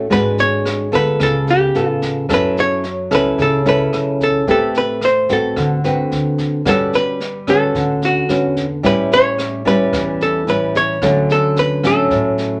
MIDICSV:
0, 0, Header, 1, 5, 480
1, 0, Start_track
1, 0, Key_signature, 2, "major"
1, 0, Tempo, 545455
1, 92, Time_signature, 4, 2, 24, 8
1, 11088, End_track
2, 0, Start_track
2, 0, Title_t, "Hollow-body jazz guitar"
2, 0, Program_c, 0, 26
2, 110, Note_on_c, 0, 71, 99
2, 348, Note_off_c, 0, 71, 0
2, 354, Note_on_c, 0, 73, 106
2, 835, Note_off_c, 0, 73, 0
2, 838, Note_on_c, 0, 71, 94
2, 1072, Note_off_c, 0, 71, 0
2, 1083, Note_on_c, 0, 69, 87
2, 1292, Note_off_c, 0, 69, 0
2, 1324, Note_on_c, 0, 67, 74
2, 1757, Note_off_c, 0, 67, 0
2, 2058, Note_on_c, 0, 71, 89
2, 2283, Note_off_c, 0, 71, 0
2, 2289, Note_on_c, 0, 73, 102
2, 2766, Note_off_c, 0, 73, 0
2, 2769, Note_on_c, 0, 71, 96
2, 2999, Note_off_c, 0, 71, 0
2, 3010, Note_on_c, 0, 69, 82
2, 3239, Note_off_c, 0, 69, 0
2, 3244, Note_on_c, 0, 71, 85
2, 3724, Note_off_c, 0, 71, 0
2, 3727, Note_on_c, 0, 69, 76
2, 3958, Note_off_c, 0, 69, 0
2, 3967, Note_on_c, 0, 69, 87
2, 4198, Note_off_c, 0, 69, 0
2, 4203, Note_on_c, 0, 71, 83
2, 4436, Note_off_c, 0, 71, 0
2, 4443, Note_on_c, 0, 72, 77
2, 4676, Note_off_c, 0, 72, 0
2, 4688, Note_on_c, 0, 69, 77
2, 5597, Note_off_c, 0, 69, 0
2, 5886, Note_on_c, 0, 69, 87
2, 6118, Note_off_c, 0, 69, 0
2, 6119, Note_on_c, 0, 71, 100
2, 6599, Note_on_c, 0, 69, 89
2, 6601, Note_off_c, 0, 71, 0
2, 7081, Note_off_c, 0, 69, 0
2, 7085, Note_on_c, 0, 66, 73
2, 7517, Note_off_c, 0, 66, 0
2, 7800, Note_on_c, 0, 71, 93
2, 8012, Note_off_c, 0, 71, 0
2, 8039, Note_on_c, 0, 73, 110
2, 8510, Note_off_c, 0, 73, 0
2, 8514, Note_on_c, 0, 71, 94
2, 8951, Note_off_c, 0, 71, 0
2, 8998, Note_on_c, 0, 69, 78
2, 9233, Note_off_c, 0, 69, 0
2, 9236, Note_on_c, 0, 71, 85
2, 9472, Note_off_c, 0, 71, 0
2, 9478, Note_on_c, 0, 73, 92
2, 9960, Note_off_c, 0, 73, 0
2, 9962, Note_on_c, 0, 69, 83
2, 10194, Note_off_c, 0, 69, 0
2, 10201, Note_on_c, 0, 71, 79
2, 10434, Note_off_c, 0, 71, 0
2, 10443, Note_on_c, 0, 69, 80
2, 11088, Note_off_c, 0, 69, 0
2, 11088, End_track
3, 0, Start_track
3, 0, Title_t, "Nylon-string guitar"
3, 0, Program_c, 1, 24
3, 88, Note_on_c, 1, 56, 55
3, 93, Note_on_c, 1, 62, 60
3, 95, Note_on_c, 1, 66, 55
3, 99, Note_on_c, 1, 71, 60
3, 773, Note_off_c, 1, 62, 0
3, 776, Note_off_c, 1, 66, 0
3, 776, Note_off_c, 1, 71, 0
3, 809, Note_on_c, 1, 59, 57
3, 815, Note_on_c, 1, 65, 54
3, 817, Note_on_c, 1, 69, 60
3, 1028, Note_off_c, 1, 56, 0
3, 1052, Note_on_c, 1, 49, 55
3, 1494, Note_off_c, 1, 59, 0
3, 1495, Note_off_c, 1, 65, 0
3, 1497, Note_off_c, 1, 69, 0
3, 1538, Note_on_c, 1, 59, 51
3, 1543, Note_on_c, 1, 65, 51
3, 1549, Note_on_c, 1, 69, 54
3, 1978, Note_off_c, 1, 59, 0
3, 1981, Note_off_c, 1, 65, 0
3, 1982, Note_off_c, 1, 69, 0
3, 1990, Note_off_c, 1, 49, 0
3, 2013, Note_on_c, 1, 54, 61
3, 2017, Note_on_c, 1, 61, 56
3, 2020, Note_on_c, 1, 64, 55
3, 2022, Note_on_c, 1, 69, 65
3, 2493, Note_off_c, 1, 61, 0
3, 2494, Note_off_c, 1, 64, 0
3, 2496, Note_off_c, 1, 69, 0
3, 2736, Note_on_c, 1, 61, 65
3, 2742, Note_on_c, 1, 64, 62
3, 2742, Note_on_c, 1, 69, 61
3, 2950, Note_off_c, 1, 54, 0
3, 2975, Note_on_c, 1, 49, 57
3, 3178, Note_off_c, 1, 61, 0
3, 3179, Note_off_c, 1, 64, 0
3, 3180, Note_off_c, 1, 69, 0
3, 3218, Note_on_c, 1, 61, 64
3, 3222, Note_on_c, 1, 64, 62
3, 3227, Note_on_c, 1, 69, 73
3, 3898, Note_off_c, 1, 61, 0
3, 3901, Note_off_c, 1, 64, 0
3, 3902, Note_off_c, 1, 69, 0
3, 3911, Note_off_c, 1, 49, 0
3, 3940, Note_on_c, 1, 57, 55
3, 3943, Note_on_c, 1, 60, 53
3, 3946, Note_on_c, 1, 67, 61
3, 3950, Note_on_c, 1, 71, 67
3, 4415, Note_off_c, 1, 60, 0
3, 4418, Note_off_c, 1, 67, 0
3, 4419, Note_off_c, 1, 71, 0
3, 4658, Note_on_c, 1, 60, 56
3, 4663, Note_on_c, 1, 66, 53
3, 4667, Note_on_c, 1, 71, 56
3, 4874, Note_off_c, 1, 57, 0
3, 4904, Note_on_c, 1, 50, 51
3, 5098, Note_off_c, 1, 60, 0
3, 5101, Note_off_c, 1, 66, 0
3, 5103, Note_off_c, 1, 71, 0
3, 5140, Note_on_c, 1, 60, 58
3, 5143, Note_on_c, 1, 66, 59
3, 5150, Note_on_c, 1, 71, 62
3, 5820, Note_off_c, 1, 60, 0
3, 5822, Note_off_c, 1, 66, 0
3, 5823, Note_off_c, 1, 71, 0
3, 5836, Note_off_c, 1, 50, 0
3, 5861, Note_on_c, 1, 55, 55
3, 5862, Note_on_c, 1, 61, 52
3, 5867, Note_on_c, 1, 66, 55
3, 5868, Note_on_c, 1, 71, 58
3, 6336, Note_off_c, 1, 61, 0
3, 6337, Note_off_c, 1, 66, 0
3, 6339, Note_off_c, 1, 71, 0
3, 6579, Note_on_c, 1, 61, 53
3, 6582, Note_on_c, 1, 66, 59
3, 6587, Note_on_c, 1, 71, 62
3, 6795, Note_off_c, 1, 55, 0
3, 6819, Note_on_c, 1, 50, 54
3, 7259, Note_off_c, 1, 61, 0
3, 7260, Note_off_c, 1, 66, 0
3, 7263, Note_off_c, 1, 71, 0
3, 7299, Note_on_c, 1, 61, 48
3, 7304, Note_on_c, 1, 66, 48
3, 7309, Note_on_c, 1, 71, 58
3, 7606, Note_off_c, 1, 61, 0
3, 7609, Note_off_c, 1, 66, 0
3, 7610, Note_off_c, 1, 71, 0
3, 7753, Note_off_c, 1, 50, 0
3, 7773, Note_on_c, 1, 55, 58
3, 7775, Note_on_c, 1, 45, 57
3, 7779, Note_on_c, 1, 61, 59
3, 7782, Note_on_c, 1, 64, 61
3, 8455, Note_off_c, 1, 55, 0
3, 8459, Note_off_c, 1, 61, 0
3, 8460, Note_off_c, 1, 64, 0
3, 8494, Note_on_c, 1, 55, 59
3, 8498, Note_on_c, 1, 61, 59
3, 8502, Note_on_c, 1, 64, 62
3, 8711, Note_off_c, 1, 45, 0
3, 8733, Note_on_c, 1, 52, 54
3, 9175, Note_off_c, 1, 55, 0
3, 9178, Note_off_c, 1, 61, 0
3, 9179, Note_off_c, 1, 64, 0
3, 9215, Note_on_c, 1, 55, 52
3, 9221, Note_on_c, 1, 61, 51
3, 9222, Note_on_c, 1, 64, 54
3, 9656, Note_off_c, 1, 55, 0
3, 9657, Note_off_c, 1, 61, 0
3, 9660, Note_off_c, 1, 64, 0
3, 9669, Note_off_c, 1, 52, 0
3, 9698, Note_on_c, 1, 50, 59
3, 9701, Note_on_c, 1, 54, 61
3, 9704, Note_on_c, 1, 61, 65
3, 9708, Note_on_c, 1, 57, 53
3, 10378, Note_off_c, 1, 54, 0
3, 10380, Note_off_c, 1, 57, 0
3, 10380, Note_off_c, 1, 61, 0
3, 10416, Note_on_c, 1, 54, 58
3, 10421, Note_on_c, 1, 57, 61
3, 10422, Note_on_c, 1, 61, 67
3, 10632, Note_off_c, 1, 50, 0
3, 10658, Note_on_c, 1, 45, 57
3, 11088, Note_off_c, 1, 45, 0
3, 11088, Note_off_c, 1, 54, 0
3, 11088, Note_off_c, 1, 57, 0
3, 11088, Note_off_c, 1, 61, 0
3, 11088, End_track
4, 0, Start_track
4, 0, Title_t, "Upright bass"
4, 0, Program_c, 2, 32
4, 94, Note_on_c, 2, 32, 84
4, 779, Note_off_c, 2, 32, 0
4, 815, Note_on_c, 2, 38, 79
4, 1037, Note_off_c, 2, 38, 0
4, 1055, Note_on_c, 2, 37, 85
4, 1501, Note_off_c, 2, 37, 0
4, 1537, Note_on_c, 2, 33, 83
4, 1982, Note_off_c, 2, 33, 0
4, 2017, Note_on_c, 2, 42, 85
4, 2701, Note_off_c, 2, 42, 0
4, 2737, Note_on_c, 2, 37, 78
4, 2959, Note_off_c, 2, 37, 0
4, 2978, Note_on_c, 2, 37, 90
4, 3423, Note_off_c, 2, 37, 0
4, 3457, Note_on_c, 2, 35, 85
4, 3903, Note_off_c, 2, 35, 0
4, 3935, Note_on_c, 2, 33, 85
4, 4620, Note_off_c, 2, 33, 0
4, 4655, Note_on_c, 2, 33, 77
4, 4878, Note_off_c, 2, 33, 0
4, 4895, Note_on_c, 2, 38, 87
4, 5342, Note_off_c, 2, 38, 0
4, 5375, Note_on_c, 2, 38, 80
4, 5822, Note_off_c, 2, 38, 0
4, 5855, Note_on_c, 2, 31, 79
4, 6540, Note_off_c, 2, 31, 0
4, 6576, Note_on_c, 2, 38, 74
4, 6799, Note_off_c, 2, 38, 0
4, 6818, Note_on_c, 2, 38, 89
4, 7263, Note_off_c, 2, 38, 0
4, 7289, Note_on_c, 2, 40, 85
4, 7738, Note_off_c, 2, 40, 0
4, 7776, Note_on_c, 2, 33, 81
4, 8460, Note_off_c, 2, 33, 0
4, 8495, Note_on_c, 2, 40, 79
4, 8718, Note_off_c, 2, 40, 0
4, 8735, Note_on_c, 2, 40, 91
4, 9181, Note_off_c, 2, 40, 0
4, 9212, Note_on_c, 2, 33, 87
4, 9659, Note_off_c, 2, 33, 0
4, 9694, Note_on_c, 2, 38, 83
4, 10378, Note_off_c, 2, 38, 0
4, 10411, Note_on_c, 2, 33, 79
4, 10635, Note_off_c, 2, 33, 0
4, 10651, Note_on_c, 2, 33, 90
4, 11088, Note_off_c, 2, 33, 0
4, 11088, End_track
5, 0, Start_track
5, 0, Title_t, "Drums"
5, 95, Note_on_c, 9, 36, 56
5, 96, Note_on_c, 9, 38, 23
5, 183, Note_off_c, 9, 36, 0
5, 184, Note_off_c, 9, 38, 0
5, 335, Note_on_c, 9, 38, 23
5, 423, Note_off_c, 9, 38, 0
5, 576, Note_on_c, 9, 37, 53
5, 576, Note_on_c, 9, 38, 22
5, 664, Note_off_c, 9, 37, 0
5, 664, Note_off_c, 9, 38, 0
5, 816, Note_on_c, 9, 36, 25
5, 817, Note_on_c, 9, 38, 26
5, 904, Note_off_c, 9, 36, 0
5, 905, Note_off_c, 9, 38, 0
5, 1054, Note_on_c, 9, 37, 57
5, 1054, Note_on_c, 9, 38, 23
5, 1056, Note_on_c, 9, 36, 56
5, 1142, Note_off_c, 9, 37, 0
5, 1142, Note_off_c, 9, 38, 0
5, 1144, Note_off_c, 9, 36, 0
5, 1296, Note_on_c, 9, 38, 23
5, 1384, Note_off_c, 9, 38, 0
5, 1537, Note_on_c, 9, 38, 23
5, 1625, Note_off_c, 9, 38, 0
5, 1777, Note_on_c, 9, 36, 21
5, 1777, Note_on_c, 9, 38, 21
5, 1865, Note_off_c, 9, 36, 0
5, 1865, Note_off_c, 9, 38, 0
5, 2018, Note_on_c, 9, 36, 57
5, 2018, Note_on_c, 9, 37, 60
5, 2018, Note_on_c, 9, 38, 23
5, 2106, Note_off_c, 9, 36, 0
5, 2106, Note_off_c, 9, 37, 0
5, 2106, Note_off_c, 9, 38, 0
5, 2262, Note_on_c, 9, 38, 23
5, 2350, Note_off_c, 9, 38, 0
5, 2496, Note_on_c, 9, 38, 23
5, 2584, Note_off_c, 9, 38, 0
5, 2737, Note_on_c, 9, 36, 24
5, 2739, Note_on_c, 9, 37, 64
5, 2739, Note_on_c, 9, 38, 25
5, 2825, Note_off_c, 9, 36, 0
5, 2827, Note_off_c, 9, 37, 0
5, 2827, Note_off_c, 9, 38, 0
5, 2978, Note_on_c, 9, 36, 57
5, 2979, Note_on_c, 9, 38, 24
5, 3066, Note_off_c, 9, 36, 0
5, 3067, Note_off_c, 9, 38, 0
5, 3216, Note_on_c, 9, 38, 22
5, 3304, Note_off_c, 9, 38, 0
5, 3457, Note_on_c, 9, 37, 58
5, 3457, Note_on_c, 9, 38, 24
5, 3545, Note_off_c, 9, 37, 0
5, 3545, Note_off_c, 9, 38, 0
5, 3698, Note_on_c, 9, 36, 20
5, 3702, Note_on_c, 9, 38, 22
5, 3786, Note_off_c, 9, 36, 0
5, 3790, Note_off_c, 9, 38, 0
5, 3937, Note_on_c, 9, 36, 58
5, 3939, Note_on_c, 9, 38, 24
5, 4025, Note_off_c, 9, 36, 0
5, 4027, Note_off_c, 9, 38, 0
5, 4175, Note_on_c, 9, 38, 23
5, 4263, Note_off_c, 9, 38, 0
5, 4413, Note_on_c, 9, 37, 56
5, 4413, Note_on_c, 9, 38, 23
5, 4501, Note_off_c, 9, 37, 0
5, 4501, Note_off_c, 9, 38, 0
5, 4655, Note_on_c, 9, 38, 26
5, 4656, Note_on_c, 9, 36, 24
5, 4743, Note_off_c, 9, 38, 0
5, 4744, Note_off_c, 9, 36, 0
5, 4896, Note_on_c, 9, 37, 58
5, 4896, Note_on_c, 9, 38, 23
5, 4897, Note_on_c, 9, 36, 55
5, 4984, Note_off_c, 9, 37, 0
5, 4984, Note_off_c, 9, 38, 0
5, 4985, Note_off_c, 9, 36, 0
5, 5141, Note_on_c, 9, 38, 22
5, 5229, Note_off_c, 9, 38, 0
5, 5381, Note_on_c, 9, 38, 23
5, 5469, Note_off_c, 9, 38, 0
5, 5617, Note_on_c, 9, 36, 21
5, 5617, Note_on_c, 9, 38, 21
5, 5705, Note_off_c, 9, 36, 0
5, 5705, Note_off_c, 9, 38, 0
5, 5857, Note_on_c, 9, 36, 59
5, 5857, Note_on_c, 9, 37, 56
5, 5857, Note_on_c, 9, 38, 25
5, 5945, Note_off_c, 9, 36, 0
5, 5945, Note_off_c, 9, 37, 0
5, 5945, Note_off_c, 9, 38, 0
5, 6098, Note_on_c, 9, 38, 22
5, 6186, Note_off_c, 9, 38, 0
5, 6339, Note_on_c, 9, 38, 23
5, 6427, Note_off_c, 9, 38, 0
5, 6576, Note_on_c, 9, 36, 26
5, 6576, Note_on_c, 9, 37, 58
5, 6576, Note_on_c, 9, 38, 23
5, 6664, Note_off_c, 9, 36, 0
5, 6664, Note_off_c, 9, 37, 0
5, 6664, Note_off_c, 9, 38, 0
5, 6817, Note_on_c, 9, 36, 56
5, 6818, Note_on_c, 9, 38, 22
5, 6905, Note_off_c, 9, 36, 0
5, 6906, Note_off_c, 9, 38, 0
5, 7057, Note_on_c, 9, 38, 22
5, 7145, Note_off_c, 9, 38, 0
5, 7296, Note_on_c, 9, 37, 54
5, 7296, Note_on_c, 9, 38, 23
5, 7384, Note_off_c, 9, 37, 0
5, 7384, Note_off_c, 9, 38, 0
5, 7535, Note_on_c, 9, 36, 21
5, 7537, Note_on_c, 9, 38, 22
5, 7623, Note_off_c, 9, 36, 0
5, 7625, Note_off_c, 9, 38, 0
5, 7776, Note_on_c, 9, 36, 58
5, 7776, Note_on_c, 9, 38, 24
5, 7864, Note_off_c, 9, 36, 0
5, 7864, Note_off_c, 9, 38, 0
5, 8021, Note_on_c, 9, 38, 24
5, 8109, Note_off_c, 9, 38, 0
5, 8258, Note_on_c, 9, 37, 52
5, 8258, Note_on_c, 9, 38, 22
5, 8346, Note_off_c, 9, 37, 0
5, 8346, Note_off_c, 9, 38, 0
5, 8496, Note_on_c, 9, 36, 26
5, 8504, Note_on_c, 9, 38, 23
5, 8584, Note_off_c, 9, 36, 0
5, 8592, Note_off_c, 9, 38, 0
5, 8736, Note_on_c, 9, 36, 58
5, 8737, Note_on_c, 9, 37, 60
5, 8737, Note_on_c, 9, 38, 23
5, 8824, Note_off_c, 9, 36, 0
5, 8825, Note_off_c, 9, 37, 0
5, 8825, Note_off_c, 9, 38, 0
5, 8983, Note_on_c, 9, 38, 22
5, 9071, Note_off_c, 9, 38, 0
5, 9219, Note_on_c, 9, 38, 23
5, 9307, Note_off_c, 9, 38, 0
5, 9455, Note_on_c, 9, 36, 21
5, 9459, Note_on_c, 9, 38, 22
5, 9543, Note_off_c, 9, 36, 0
5, 9547, Note_off_c, 9, 38, 0
5, 9695, Note_on_c, 9, 36, 57
5, 9695, Note_on_c, 9, 37, 60
5, 9695, Note_on_c, 9, 38, 25
5, 9783, Note_off_c, 9, 36, 0
5, 9783, Note_off_c, 9, 37, 0
5, 9783, Note_off_c, 9, 38, 0
5, 9938, Note_on_c, 9, 38, 22
5, 10026, Note_off_c, 9, 38, 0
5, 10174, Note_on_c, 9, 38, 23
5, 10262, Note_off_c, 9, 38, 0
5, 10413, Note_on_c, 9, 36, 24
5, 10414, Note_on_c, 9, 37, 62
5, 10414, Note_on_c, 9, 38, 25
5, 10501, Note_off_c, 9, 36, 0
5, 10502, Note_off_c, 9, 37, 0
5, 10502, Note_off_c, 9, 38, 0
5, 10652, Note_on_c, 9, 38, 22
5, 10653, Note_on_c, 9, 36, 57
5, 10740, Note_off_c, 9, 38, 0
5, 10741, Note_off_c, 9, 36, 0
5, 10893, Note_on_c, 9, 38, 22
5, 10981, Note_off_c, 9, 38, 0
5, 11088, End_track
0, 0, End_of_file